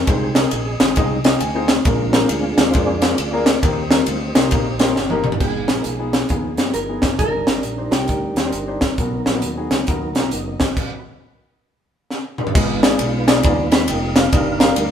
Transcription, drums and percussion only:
0.07 kick loud
0.07 ride bell medium
0.35 snare loud
0.35 ride bell medium
0.51 ride bell medium
0.80 snare loud
0.80 ride bell medium
0.96 kick loud
0.96 ride bell medium
1.24 snare loud
1.24 ride bell medium
1.40 ride bell medium
1.68 snare loud
1.68 ride bell medium
1.85 kick loud
1.85 ride bell medium
2.13 snare loud
2.13 ride bell medium
2.29 ride bell medium
2.58 snare loud
2.58 ride bell medium
2.73 kick loud
2.73 ride bell medium
3.02 snare loud
3.02 ride bell medium
3.18 ride bell medium
3.46 snare loud
3.46 ride bell medium
3.63 kick loud
3.63 ride bell medium
3.91 snare loud
3.91 ride bell medium
4.06 ride bell medium
4.35 snare loud
4.35 ride bell medium
4.51 kick loud
4.51 ride bell medium
4.79 snare loud
4.79 ride bell medium
4.96 snare medium
5.10 high tom medium
5.24 mid tom medium
5.32 floor tom loud
5.40 kick loud
5.40 crash medium
5.68 snare loud
5.68 closed hi-hat medium
5.84 closed hi-hat medium
6.13 snare loud
6.13 closed hi-hat medium
6.29 kick loud
6.29 closed hi-hat medium
6.57 snare medium
6.57 closed hi-hat medium
6.74 closed hi-hat medium
7.02 kick medium
7.02 snare medium
7.02 closed hi-hat medium
7.19 kick loud
7.19 closed hi-hat medium
7.47 snare loud
7.47 closed hi-hat medium
7.63 closed hi-hat medium
7.92 snare loud
7.92 closed hi-hat medium
8.08 kick medium
8.08 closed hi-hat medium
8.36 snare medium
8.36 closed hi-hat medium
8.53 closed hi-hat medium
8.81 kick medium
8.81 snare loud
8.81 closed hi-hat medium
8.98 kick loud
8.98 closed hi-hat medium
9.26 snare loud
9.26 closed hi-hat medium
9.42 closed hi-hat medium
9.71 snare loud
9.71 closed hi-hat medium
9.87 kick medium
9.87 closed hi-hat medium
10.15 snare medium
10.15 closed hi-hat medium
10.31 closed hi-hat medium
10.60 kick medium
10.60 snare medium
10.60 closed hi-hat medium
10.77 kick medium
10.77 crash medium
12.10 snare soft
12.38 mid tom medium
12.47 floor tom medium
12.55 kick loud
12.55 crash loud
12.83 snare loud
12.83 ride bell medium
12.99 ride bell medium
13.28 snare loud
13.28 ride bell medium
13.43 kick loud
13.43 ride bell medium
13.72 snare loud
13.72 ride bell medium
13.88 ride bell medium
14.16 snare loud
14.16 ride bell medium
14.33 kick loud
14.33 ride bell medium
14.60 snare loud
14.60 ride bell medium
14.76 ride bell medium

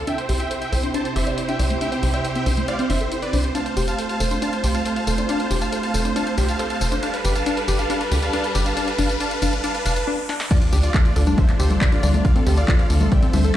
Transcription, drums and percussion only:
0.07 closed hi-hat medium
0.18 closed hi-hat medium
0.29 open hi-hat loud
0.40 closed hi-hat soft
0.51 closed hi-hat medium
0.62 closed hi-hat soft
0.73 open hi-hat loud
0.84 closed hi-hat soft
0.94 closed hi-hat medium
1.05 closed hi-hat soft
1.16 open hi-hat loud
1.27 closed hi-hat soft
1.38 closed hi-hat medium
1.49 closed hi-hat medium
1.59 open hi-hat loud
1.70 closed hi-hat soft
1.81 closed hi-hat medium
1.92 closed hi-hat soft
2.03 open hi-hat loud
2.14 closed hi-hat soft
2.25 closed hi-hat medium
2.35 closed hi-hat soft
2.46 open hi-hat loud
2.57 closed hi-hat soft
2.68 closed hi-hat medium
2.79 closed hi-hat soft
2.90 open hi-hat loud
3.01 closed hi-hat soft
3.12 closed hi-hat medium
3.22 closed hi-hat soft
3.33 open hi-hat loud
3.44 closed hi-hat soft
3.55 closed hi-hat medium
3.55 tambourine soft
3.66 closed hi-hat soft
3.77 open hi-hat loud
3.77 tambourine medium
3.88 closed hi-hat soft
3.88 tambourine soft
3.99 closed hi-hat medium
3.99 tambourine soft
4.09 closed hi-hat soft
4.20 open hi-hat loud
4.20 tambourine medium
4.31 closed hi-hat medium
4.31 tambourine soft
4.31 high conga medium
4.42 closed hi-hat medium
4.42 tambourine soft
4.53 closed hi-hat soft
4.64 open hi-hat loud
4.64 tambourine medium
4.75 closed hi-hat medium
4.75 tambourine soft
4.75 high conga medium
4.86 closed hi-hat medium
4.86 tambourine soft
4.96 closed hi-hat medium
5.07 open hi-hat loud
5.07 tambourine medium
5.07 high conga medium
5.18 closed hi-hat medium
5.18 tambourine soft
5.18 high conga medium
5.29 closed hi-hat medium
5.29 tambourine soft
5.40 closed hi-hat medium
5.51 open hi-hat loud
5.51 tambourine medium
5.62 closed hi-hat medium
5.62 tambourine soft
5.72 closed hi-hat medium
5.72 tambourine soft
5.83 closed hi-hat medium
5.94 open hi-hat loud
5.94 tambourine medium
6.05 closed hi-hat medium
6.05 tambourine soft
6.05 high conga medium
6.16 closed hi-hat medium
6.16 tambourine soft
6.27 closed hi-hat soft
6.38 open hi-hat loud
6.38 tambourine medium
6.38 high conga medium
6.49 closed hi-hat medium
6.49 tambourine soft
6.59 closed hi-hat medium
6.59 tambourine soft
6.70 closed hi-hat medium
6.81 open hi-hat loud
6.81 tambourine medium
6.92 closed hi-hat medium
6.92 tambourine soft
7.03 closed hi-hat medium
7.03 tambourine soft
7.14 closed hi-hat medium
7.25 open hi-hat loud
7.25 tambourine medium
7.35 closed hi-hat medium
7.35 tambourine soft
7.46 closed hi-hat medium
7.46 tambourine soft
7.57 closed hi-hat medium
7.68 open hi-hat loud
7.68 tambourine medium
7.79 closed hi-hat medium
7.79 tambourine soft
7.79 high conga medium
7.90 closed hi-hat medium
7.90 tambourine soft
8.01 closed hi-hat medium
8.12 open hi-hat loud
8.12 tambourine medium
8.23 closed hi-hat medium
8.23 tambourine soft
8.23 high conga medium
8.33 closed hi-hat medium
8.33 tambourine soft
8.44 closed hi-hat medium
8.55 open hi-hat loud
8.55 tambourine medium
8.55 high conga medium
8.66 closed hi-hat medium
8.66 tambourine soft
8.66 high conga medium
8.77 closed hi-hat medium
8.77 tambourine soft
8.88 closed hi-hat medium
8.98 open hi-hat loud
8.98 tambourine medium
9.09 closed hi-hat medium
9.09 tambourine soft
9.20 closed hi-hat medium
9.20 tambourine soft
9.31 closed hi-hat medium
9.42 open hi-hat loud
9.42 tambourine medium
9.53 closed hi-hat medium
9.53 tambourine soft
9.53 high conga medium
9.64 closed hi-hat medium
9.64 tambourine soft
9.75 closed hi-hat medium
9.86 open hi-hat loud
9.86 tambourine medium
9.86 high conga medium
9.96 closed hi-hat medium
9.96 tambourine soft
10.29 snare medium
10.40 snare medium
10.51 kick loud
10.51 closed hi-hat medium
10.51 crash loud
10.51 tambourine soft
10.62 closed hi-hat medium
10.73 open hi-hat loud
10.73 tambourine medium
10.83 closed hi-hat medium
10.83 tambourine soft
10.94 kick loud
10.94 clap loud
10.94 closed hi-hat medium
10.94 tambourine soft
11.05 closed hi-hat medium
11.16 open hi-hat loud
11.16 tambourine medium
11.27 closed hi-hat medium
11.27 tambourine soft
11.27 high conga medium
11.38 kick loud
11.38 closed hi-hat medium
11.38 tambourine soft
11.49 clap soft
11.49 closed hi-hat medium
11.60 open hi-hat loud
11.60 tambourine medium
11.70 closed hi-hat medium
11.70 tambourine soft
11.70 high conga medium
11.81 kick loud
11.81 clap loud
11.81 closed hi-hat medium
11.81 tambourine soft
11.92 closed hi-hat medium
12.03 open hi-hat loud
12.03 tambourine medium
12.03 high conga medium
12.14 closed hi-hat medium
12.14 tambourine soft
12.14 high conga medium
12.25 kick loud
12.25 closed hi-hat medium
12.25 tambourine soft
12.36 closed hi-hat medium
12.47 open hi-hat loud
12.47 tambourine medium
12.57 closed hi-hat medium
12.57 tambourine soft
12.68 kick loud
12.68 clap loud
12.68 closed hi-hat medium
12.68 tambourine soft
12.79 closed hi-hat medium
12.90 open hi-hat loud
12.90 tambourine medium
13.01 closed hi-hat medium
13.01 tambourine soft
13.01 high conga medium
13.12 kick loud
13.12 closed hi-hat medium
13.12 tambourine soft
13.23 closed hi-hat medium
13.33 open hi-hat loud
13.33 tambourine medium
13.33 high conga medium
13.44 closed hi-hat medium
13.44 tambourine soft

